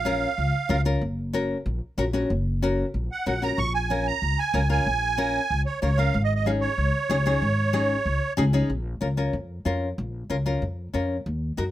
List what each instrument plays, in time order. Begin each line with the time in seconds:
Already playing: upright bass A#1, accordion F5
0.05 nylon-string guitar C#4 F4 A#4
0.38 upright bass C#2
0.69 upright bass C#2, nylon-string guitar C#4 F4 A#4
0.85 nylon-string guitar C#4 F4 A#4
1.01 upright bass F#1
1.33 nylon-string guitar C#4 F#4 A#4
1.66 upright bass A#1
1.98 upright bass A#1, nylon-string guitar C#4 F#4 A#4
2.13 nylon-string guitar C#4 F#4 A#4
2.30 upright bass F#1
2.62 nylon-string guitar C#4 F#4 A#4
2.94 upright bass A#1
3.12 accordion F#5
3.26 upright bass A#1, nylon-string guitar C#4 F#4 A#4, accordion F#5
3.42 nylon-string guitar C#4 F#4 A#4, accordion A#5
3.58 upright bass A#1, accordion C#6
3.74 accordion G#5
3.90 nylon-string guitar C#4 F4 A#4
4.07 accordion A#5
4.22 upright bass C#2
4.39 accordion G#5
4.54 upright bass C#2, nylon-string guitar C#4 F4 A#4
4.69 nylon-string guitar C#4 F4 A#4, accordion G#5
4.86 upright bass A#1
5.18 nylon-string guitar C#4 F4 A#4
5.50 upright bass C#2
5.66 accordion C#5
5.81 upright bass C#2, nylon-string guitar C#4 F4 A#4, accordion C#5
5.97 nylon-string guitar C#4 F4 A#4, accordion F5
6.14 upright bass G#1
6.24 accordion D#5
6.35 accordion D#5
6.46 nylon-string guitar C#4 D#4 G#4, accordion F5
6.61 accordion C#5
6.78 upright bass C#2
7.10 upright bass C#2, nylon-string guitar C#4 D#4 G#4
7.26 nylon-string guitar C#4 D#4 G#4
7.42 upright bass G#1
7.73 nylon-string guitar C#4 D#4 G#4
8.05 upright bass C#2
8.37 upright bass C#2, nylon-string guitar C#4 D#4 G#4 G#5
8.53 nylon-string guitar C#4 D#4 G#4 C#5
8.70 upright bass A#1
9.01 upright bass C#2, nylon-string guitar C#4 F4 A#4
9.17 nylon-string guitar C#4 F4 A#4
9.33 upright bass F2
9.65 upright bass F2, nylon-string guitar C#4 F4 A#4
9.98 upright bass A#1
10.30 upright bass C#2, nylon-string guitar C#4 F4 A#4
10.46 nylon-string guitar C#4 F4 A#4
10.62 upright bass F2
10.94 upright bass F2, nylon-string guitar C#4 F4 A#4
11.26 upright bass D#2
11.57 upright bass F#2, nylon-string guitar D#4 F#4 A#4